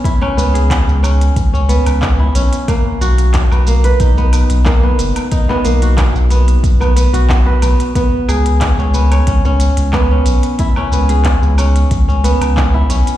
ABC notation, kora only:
X:1
M:4/4
L:1/16
Q:1/4=91
K:C#dor
V:1 name="Kora"
E C B, G z2 C z2 C B, z2 E C z | A, z F3 B, A, B D B,3 A, B,3 | D B, A, F z2 B, z2 B, B, F z B B, z | B, z G3 C B, c C C3 B, C3 |
E C B, G z2 C z2 C B, z2 E C z |]